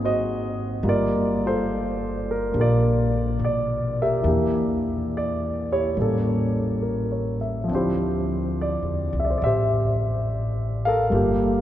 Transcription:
0.00 0.79 G#1 medium
0.00 0.83 F#3 soft
0.00 0.82 A#3 soft
0.00 0.83 C4 soft
0.00 0.83 D#4 soft
0.00 0.86 G#4 medium
0.04 0.83 F#4 medium
0.04 0.83 C5 soft
0.04 0.83 D#5 medium
0.83 2.50 G1 medium
0.83 4.24 G3 soft
0.83 2.50 A#3 soft
0.83 0.86 F4 soft
0.88 1.45 F4 soft
0.88 2.29 A#4 soft
0.88 1.45 D5 medium
1.46 2.58 F4 soft
1.46 3.10 A4 soft
1.46 2.32 C5 medium
2.31 2.55 A#4 medium
2.52 3.35 A#1 medium
2.52 4.22 A#3 soft
2.52 4.24 D4 soft
2.52 4.00 G4 soft
2.60 4.24 F4 medium
2.60 4.00 A#4 soft
2.60 3.39 D5 medium
3.39 4.21 B2 medium
3.44 4.00 D5 medium
4.02 4.26 G4 soft
4.02 5.66 A#4 soft
4.02 5.17 E5 medium
4.22 5.92 E2 medium
4.22 5.95 E3 soft
4.22 5.96 A#3 soft
4.22 5.97 D4 soft
4.28 5.71 G4 medium
5.17 5.68 D5 medium
5.73 7.38 E4 soft
5.73 7.38 G4 soft
5.73 6.52 C#5 medium
5.97 7.64 A1 medium
5.97 7.68 G3 soft
5.97 7.69 A#3 soft
5.97 7.70 C#4 soft
6.02 7.71 A4 soft
6.82 7.36 A#4 soft
7.12 7.56 C#5 soft
7.41 7.85 E5 soft
7.64 11.10 F3 soft
7.68 8.80 D2 medium
7.68 11.12 C4 soft
7.68 11.13 D4 soft
7.75 9.40 E4 soft
7.75 9.40 F4 soft
7.75 9.44 G4 soft
7.75 8.54 C5 medium
8.61 9.16 D5 medium
8.83 9.09 E2 soft
9.13 9.39 C2 medium
9.20 9.24 E5 medium
9.25 9.29 D5 medium
9.30 9.35 C5 soft
9.38 11.08 A1 medium
9.38 9.42 D5 medium
9.44 11.11 G4 soft
9.44 11.10 C5 soft
9.44 10.24 E5 medium
10.85 11.61 A4 medium
10.85 11.61 A#4 medium
10.85 11.61 F5 medium
11.10 11.61 G1 medium
11.10 11.61 G3 soft
11.10 11.61 A#3 soft
11.10 11.61 F4 soft
11.14 11.61 G4 soft

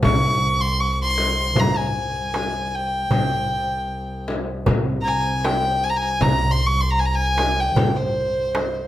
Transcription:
0.00 3.12 C2 medium
0.00 0.62 C#6 loud
0.00 darbuka dum medium
0.00 frame drum loud
0.04 1.59 C2 medium
0.23 darbuka ka soft
0.41 darbuka ka soft
0.61 0.81 C6 loud
0.79 0.99 C#6 medium
0.79 darbuka ka soft
1.02 1.61 C6 loud
1.18 frame drum medium
1.56 3.13 G2 medium
1.56 1.78 A#5 medium
1.56 darbuka dum medium
1.56 frame drum loud
1.77 2.76 G#5 medium
2.34 darbuka tek medium
2.34 frame drum medium
2.53 darbuka ka soft
2.74 4.30 G5 medium
3.11 8.87 C2 medium
3.11 darbuka dum medium
3.11 frame drum medium
3.29 darbuka ka soft
3.88 darbuka ka soft
4.28 frame drum medium
4.66 5.91 C3 medium
4.66 darbuka dum medium
4.66 frame drum medium
5.01 5.47 G#5 medium
5.01 5.06 A#5 medium
5.44 5.85 G5 medium
5.44 darbuka tek medium
5.44 frame drum medium
5.65 darbuka ka soft
5.84 5.91 G#5 medium
5.89 5.98 A#5 medium
5.97 6.23 G#5 medium
6.21 7.77 C2 medium
6.21 6.52 A#5 loud
6.21 frame drum medium
6.21 darbuka dum medium
6.51 6.67 C6 medium
6.66 6.82 C#6 loud
6.81 6.92 C6 medium
6.91 7.01 A#5 loud
6.99 7.07 G#5 medium
6.99 darbuka ka soft
7.05 7.16 A#5 medium
7.15 7.62 G#5 loud
7.38 darbuka tek medium
7.38 frame drum medium
7.60 7.98 G5 medium
7.76 8.87 G2 medium
7.76 darbuka dum medium
7.76 frame drum medium
7.96 8.87 C5 medium
8.55 darbuka tek medium
8.55 frame drum medium
8.74 darbuka ka soft

